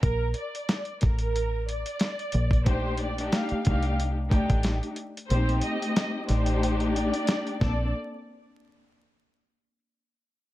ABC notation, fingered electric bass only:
X:1
M:4/4
L:1/16
Q:"Swing 16ths" 1/4=91
K:Cdor
V:1 name="Fingered electric bass" clef=bass
B,,,2 z4 A,,,4- A,,, z3 B,,,2- | B,,,4 z2 C,,4- C,, A,,,2 z3 | B,,,2 z4 A,,,4- A,,, z3 B,,,2 | z16 |]